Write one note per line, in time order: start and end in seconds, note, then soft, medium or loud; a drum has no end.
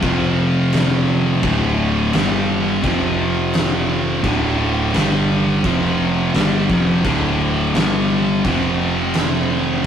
0.01 1.39 F1 loud
0.01 1.41 F2 loud
0.01 1.41 C3 loud
0.01 1.41 F3 loud
0.01 kick loud
0.01 crash medium
0.73 snare loud
0.73 crash medium
1.42 2.09 D1 loud
1.42 2.12 D2 medium
1.42 2.12 A2 loud
1.42 2.12 D3 loud
1.42 kick loud
1.42 crash medium
2.13 2.80 G1 loud
2.13 2.82 G2 loud
2.13 2.83 D3 loud
2.13 2.83 G3 loud
2.13 snare loud
2.13 crash medium
2.83 4.20 F1 medium
2.83 4.23 F2 loud
2.83 4.23 C3 loud
2.83 4.23 F3 loud
2.83 kick loud
2.83 crash medium
3.53 snare loud
3.53 crash medium
4.24 4.90 D1 loud
4.24 4.93 D2 loud
4.24 4.93 A2 loud
4.24 4.93 D3 loud
4.24 kick loud
4.24 crash medium
4.93 5.61 G1 loud
4.93 5.63 G2 medium
4.93 5.63 D3 loud
4.93 5.63 G3 loud
4.93 snare loud
4.93 crash medium
5.64 6.31 F1 medium
5.64 6.32 F2 loud
5.64 6.33 C3 loud
5.64 6.33 F3 loud
5.64 kick loud
5.64 crash medium
6.33 6.67 G1 medium
6.33 6.67 G2 medium
6.33 6.68 D3 loud
6.33 6.68 G3 loud
6.33 snare loud
6.33 crash medium
6.67 7.02 F1 medium
6.67 7.02 F2 medium
6.67 7.03 C3 loud
6.67 7.03 F3 loud
6.67 kick loud
7.04 7.70 D1 medium
7.04 7.73 D2 loud
7.04 7.73 A2 loud
7.04 7.73 D3 loud
7.04 kick loud
7.04 crash medium
7.74 8.40 G1 medium
7.74 8.43 G2 loud
7.74 8.44 D3 loud
7.74 8.44 G3 loud
7.74 snare loud
7.74 crash medium
8.45 9.81 F1 medium
8.45 9.83 F2 medium
8.45 9.84 C3 loud
8.45 9.84 F3 loud
8.45 kick loud
8.45 crash medium
9.14 snare loud
9.14 crash medium